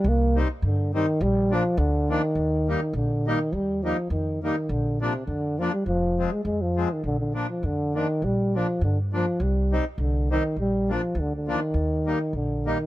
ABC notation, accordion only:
X:1
M:2/4
L:1/8
Q:"Swing" 1/4=102
K:Eb
V:1 name="Accordion"
z [G,CE] z [G,CE] | z [F,B,D] z [F,B,D] | z [G,B,E] z [G,B,E] | z [G,B,E] z [G,B,E] |
z [F,B,D] z [F,B,D] | z [F,A,C] z [F,A,C] | z [F,B,D] z [F,B,D] | z [F,B,D] z [F,B,D] |
z [G,CE] z [G,CE] | z [F,B,D] z [F,B,D] | z [G,B,E] z [G,B,E] |]